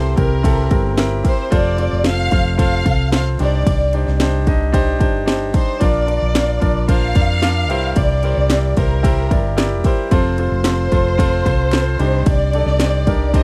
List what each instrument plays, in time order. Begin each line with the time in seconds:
Already playing: fingered electric bass C2, grand piano C3 G3 C4 E4 G4 A4 A#4, violin section C5
0.16 fingered electric bass C2, grand piano C4 E4 G4 A#4, violin section A#4, kick, ride
0.43 grand piano C4 E4 G4 A4, kick, ride
0.70 fingered electric bass G1, grand piano C4 E4 G4 A#4, kick, ride
0.97 grand piano C4 E4 G4 A#4, snare, ride
1.24 grand piano C4 E4 G4 A#4, violin section C5, kick, ride
1.51 fingered electric bass F1, grand piano C3 C4 F4 A4 C5, violin section D5, kick, ride
1.78 grand piano C4 F4 A4 C5, ride
1.93 fingered electric bass F1
2.04 grand piano C4 F4 A4 C5, violin section F5, snare, ride
2.31 fingered electric bass F1, grand piano C4 F4 A4 C5, kick, ride
2.58 grand piano C4 F4 A4 C5, violin section F5, kick, ride
2.84 fingered electric bass C2, grand piano C4 F4 A4 C5, kick, ride
3.12 grand piano C4 F4 A4 C5, violin section F5, snare, ride
3.39 fingered electric bass C2, grand piano G2 D4 D#4 G4 C5, violin section D5, ride
3.67 fingered electric bass C2, kick, ride
3.93 grand piano D4 D#4 G4 C5, ride
4.07 fingered electric bass C2, snare
4.20 grand piano D4 D#4 G4 C5, snare, ride
4.46 fingered electric bass C2, grand piano D4 D#4 G4 D#5, kick, ride
4.72 grand piano D4 D#4 G4 C5, kick, ride
4.99 fingered electric bass G1, grand piano D4 D#4 G4 C5, kick, ride
5.26 grand piano D4 D#4 G4 C5, snare, ride
5.54 grand piano D4 D#4 G4 C5, violin section C5, kick, ride
5.80 fingered electric bass A#1, grand piano D4 F4 A#4 D5, violin section D5, kick, ride
6.06 grand piano D4 F4 A#4 D5, ride
6.22 fingered electric bass A#1
6.34 grand piano D4 F4 A#4 F5, snare, clap, ride
6.60 fingered electric bass A#1, grand piano D4 F4 A#4 D5, kick, ride
6.88 grand piano D4 F4 A#4 C5, violin section F5, kick, ride
7.14 fingered electric bass F2, grand piano D4 F4 A#4 D5, kick, ride
7.42 grand piano D4 F4 A#4 D5, snare, clap, ride
7.69 fingered electric bass C2, grand piano G2 E4 G4 A#4 C5, ride
7.96 fingered electric bass C2, violin section D5, kick, ride
8.23 grand piano E4 G4 A#4 C5, ride
8.37 fingered electric bass C2
8.50 grand piano E4 G4 A#4 D5, snare, clap, ride
8.77 fingered electric bass C2, grand piano E4 G4 A#4 C5, violin section A#4, kick, ride
9.03 grand piano E4 G4 A#4 C5, kick, ride
9.30 fingered electric bass G1, grand piano E4 G4 A#4 D5, kick, ride
9.57 grand piano E4 G4 A#4 D5, snare, clap, ride
9.84 grand piano E4 G4 A#4 C5, kick, ride
10.11 fingered electric bass F1, grand piano C3 C4 F4 A4 C5, violin section C5, kick, ride
10.38 grand piano C4 F4 A4 C5, ride
10.52 fingered electric bass F1
10.64 grand piano C4 F4 A4 C5, snare, clap, ride
10.91 fingered electric bass F1, grand piano C4 F4 A4 C5, kick, ride
11.18 grand piano C4 F4 A4 C5, kick, ride
11.45 fingered electric bass C2, grand piano C4 F4 A4 C5, kick, ride
11.72 grand piano C4 F4 A4 C5, snare, clap, ride
11.99 fingered electric bass C2, grand piano G2 D4 D#4 G4 C5, ride
12.26 fingered electric bass C2, violin section D5, kick, ride
12.53 grand piano D4 D#4 G4 A4, ride
12.66 fingered electric bass C2, snare
12.79 grand piano D4 D#4 G4 C5, snare, clap, ride
13.06 fingered electric bass C2, grand piano D4 D#4 G4 A#4, kick, ride
13.34 grand piano D4 D#4 G4 C5, violin section D#5, kick, ride